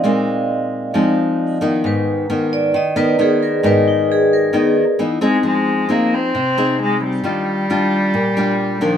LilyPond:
<<
  \new Staff \with { instrumentName = "Vibraphone" } { \time 4/4 \key f \dorian \tempo 4 = 133 r1 | ces''4. d''8 ees''8 ces''8 aes'8 bes'8 | ces''8 ees'8 aes'8 bes'4 r4. | r1 |
r1 | }
  \new Staff \with { instrumentName = "Nylon-string guitar" } { \time 4/4 \key f \dorian << { <aes c' ees'>2 <aes c' ees'>4. <ees ces' ees'>8~ | <ees ces' ees'>4 <ees ces' ees'>4 r8 <ees ces' ees'>8 <ees ces' ees'>4 | <ees ces' ees'>2 <ees ces' ees'>8 r8 <e ces' dis'>8 <bis dis' gis'>8~ | <bis dis' gis'>4 <c' ees' aes'>4 r8 <c' ees' aes'>4. |
<g d' f'>4 <g d' f'>4 r8 <g d' f'>4 <ees bes d'>8 | } \\ { bes,2 f2 | aes,2 ees2 | aes,2 ees4 r4 | f2 c2 |
ees2 bes,2 | } >> }
  \new Staff \with { instrumentName = "Cello" } { \clef bass \time 4/4 \key f \dorian r1 | r1 | r2. r8 gis8 | aes4 bes8 c'4. aes8 g8~ |
g2.~ g8 f8 | }
>>